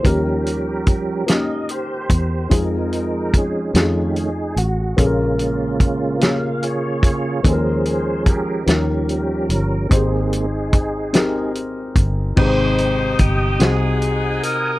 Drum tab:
CC |------|------|------|------|
HH |xxxxxx|xxxxxx|xxxxxx|xxxxxx|
SD |---o--|---o--|---o--|---o--|
BD |o-o--o|o-o---|o-o--o|o-o---|

CC |------|x-----|
HH |xxxxxx|-xxxxx|
SD |---o--|---o--|
BD |o-o--o|o-o---|